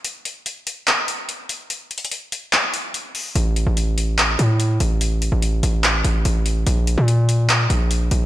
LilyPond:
<<
  \new Staff \with { instrumentName = "808-style bass" } { \clef bass \time 4/4 \key bes \lydian \tempo 4 = 145 r1 | r1 | a,,8. a,,4.~ a,,16 a,4 a,,8~ | a,,8. a,,8. a,,4 a,,8 a,,4 |
bes,,8. bes,4.~ bes,16 bes,,4 bes,,8 | }
  \new DrumStaff \with { instrumentName = "Drums" } \drummode { \time 4/4 hh8 hh8 hh8 hh8 <hc hh>8 hh8 hh8 hh8 | \tuplet 3/2 { hh16 r16 r16 hh16 hh16 hh16 } hh8 hh8 <hc hh>8 hh8 hh8 hho8 | hh8 hh8 hh8 hh8 <hc hh>8 hh8 hh8 hh8 | hh8 hh8 hh8 hh8 <hc hh>8 hh8 hh8 hh8 |
hh8 hh8 hh8 hh8 <hc hh>8 hh8 hh8 hh8 | }
>>